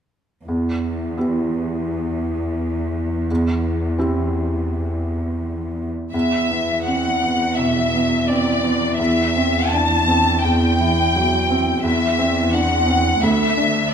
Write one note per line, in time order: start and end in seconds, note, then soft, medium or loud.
0.46 5.89 E2 soft
0.46 1.16 E2 soft
1.17 3.26 B3 soft
1.17 3.26 E4 soft
1.17 3.26 G4 soft
3.31 3.97 E2 soft
3.98 6.10 C4 soft
3.98 6.10 E4 soft
3.98 6.10 G4 soft
6.13 7.54 E2 soft
6.13 11.81 E2 soft
6.13 6.83 E5 soft
6.51 7.09 B3 soft
6.86 7.23 C4 soft
6.86 7.56 F#5 soft
7.23 7.79 B3 soft
7.57 8.15 B2 soft
7.57 8.28 E5 soft
7.95 8.50 B3 soft
8.28 8.64 C4 soft
8.28 8.99 D5 soft
8.64 8.99 B3 soft
8.97 10.40 E2 soft
8.97 9.71 E5 soft
9.36 9.95 C4 soft
9.71 10.09 D4 soft
9.71 10.43 A5 medium
10.08 10.65 C4 soft
10.43 11.80 E2 soft
10.43 11.84 G5 soft
10.80 11.36 E3 soft
11.16 11.50 F#3 soft
11.50 11.85 C4 soft
11.84 13.19 E2 soft
11.84 13.20 E2 soft
11.84 12.52 E5 medium
12.19 12.75 C4 soft
12.53 12.89 D4 soft
12.53 13.22 F#5 soft
12.88 13.22 C4 soft
13.23 13.94 D2 soft
13.23 13.93 E5 medium
13.57 13.94 D4 soft